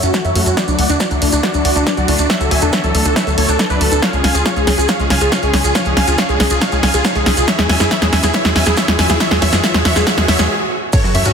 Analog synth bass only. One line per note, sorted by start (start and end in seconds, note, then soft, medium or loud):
0.03 0.12 F#2 medium
0.25 0.33 F#2 medium
0.35 0.44 F#2 loud
0.46 0.55 F#2 loud
0.68 0.76 D2 medium
0.79 0.87 D2 loud
0.89 0.98 E2 medium
1.11 1.20 D2 medium
1.22 1.30 D2 medium
1.33 1.41 D2 medium
1.54 1.63 D2 medium
1.65 1.74 D2 loud
1.76 1.84 D2 medium
1.97 2.06 D2 medium
2.08 2.17 D2 loud
2.19 2.28 D2 medium
2.40 2.49 D2 medium
2.51 2.60 D2 medium
2.62 2.71 E2 medium
2.84 2.92 D2 medium
2.94 3.03 D2 loud
3.05 3.14 D2 medium
3.27 3.35 D2 medium
3.38 3.46 D2 loud
3.48 3.57 D2 medium
3.70 3.79 D2 medium
3.81 3.89 D2 loud
3.92 4.00 D2 medium
4.13 4.22 C#2 medium
4.24 4.33 C#2 medium
4.35 4.43 D2 medium
4.56 4.65 C#2 medium
4.67 4.76 C#2 loud
4.78 4.87 C#2 medium
4.99 5.08 C#2 medium
5.10 5.19 C#2 medium
5.21 5.30 C#2 medium
5.43 5.51 C#2 medium
5.53 5.62 C#2 loud
5.64 5.73 C#2 medium
5.86 5.95 C#2 medium
5.97 6.05 C#2 loud
6.07 6.16 D2 loud
6.29 6.38 C#2 medium
6.40 6.48 C#2 medium
6.51 6.59 C#2 medium
6.72 6.81 C#2 medium
6.83 6.92 C#2 loud
6.94 7.02 C#2 medium
7.15 7.24 C#2 medium
7.26 7.35 C#2 loud
7.37 7.46 C#2 medium
7.59 7.67 E2 medium
7.69 7.78 E2 loud
7.80 7.89 F#2 loud
8.02 8.10 E2 medium
8.13 8.21 E2 loud
8.23 8.32 E2 medium
8.45 8.54 E2 medium
8.56 8.64 E2 loud
8.67 8.75 E2 medium
8.88 8.97 E2 medium
8.99 9.07 E2 loud
9.10 9.18 E2 medium
9.31 9.40 E2 medium
9.42 9.51 E2 loud
9.53 9.61 F#2 medium
9.74 9.83 E2 medium
9.85 9.94 E2 loud
9.96 10.05 E2 medium
10.18 10.26 E2 medium
10.28 10.37 E2 loud
10.39 10.48 E2 loud
11.04 11.13 F#2 medium
11.15 11.23 F#2 loud
11.26 11.33 G#2 loud